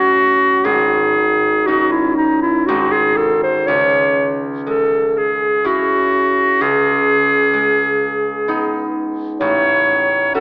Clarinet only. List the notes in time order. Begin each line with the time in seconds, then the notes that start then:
Already playing: F#4
0.65 G#4
1.67 F#4
1.92 E4
2.17 D#4
2.41 E4
2.66 F#4
2.92 G#4
3.16 A4
3.43 C5
3.67 C#5
4.68 A4
5.17 G#4
5.67 F#4
6.62 G#4
9.41 C#5
10.35 A4